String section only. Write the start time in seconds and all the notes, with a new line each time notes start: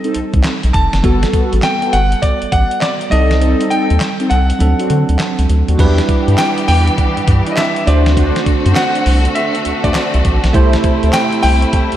5.79 E3 B3 D4 G4
7.87 D3 A3 C4 F#4
10.54 C3 G3 E4